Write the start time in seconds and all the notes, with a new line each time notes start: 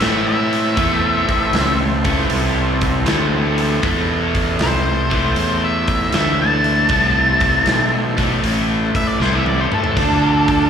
Already playing: C4 E4 A4 C5
0.00 A2 E3 A3, snare, open hi-hat
0.04 E5
0.28 E5
0.53 open hi-hat
0.76 E2 A2 E3 A3 C4 E4 A4 C5, kick, open hi-hat
1.29 muted fingered electric bass stroke, kick, open hi-hat
1.53 C#2, snare, open hi-hat
2.04 A2 E3 A3, kick, open hi-hat
2.30 C2, open hi-hat
2.81 kick, open hi-hat
3.06 D2 A2 E3 A3, snare, open hi-hat
3.58 open hi-hat
3.82 E2 A2 E3 A3 E4 A4 C5, kick, open hi-hat
4.35 kick, open hi-hat
4.59 C2 C5, snare, open hi-hat
5.10 A2 E3 A3, kick, open hi-hat
5.36 E2, open hi-hat
5.64 E5
5.88 kick, open hi-hat
6.12 D2 A2 E3 A3 E5, snare, open hi-hat
6.41 A5
6.64 open hi-hat
6.89 C2 A2 E3 E4 A4 C5, kick, open hi-hat
6.93 A3
7.40 kick, open hi-hat
7.66 B1, snare, open hi-hat
8.17 A2 E3 A3, kick, open hi-hat
8.43 A1, open hi-hat
8.95 E5, muted fingered electric bass stroke, kick, open hi-hat
9.07 D5
9.19 C2 A2 E3 C5, snare
9.24 A3
9.35 E5
9.46 D5, high tom
9.61 C5
9.71 A4, muted fingered electric bass stroke, mid tom
9.84 floor tom
9.96 D2 D3 A3 D4 F4 A4 D5, kick, open hi-hat, splash
10.48 kick, open hi-hat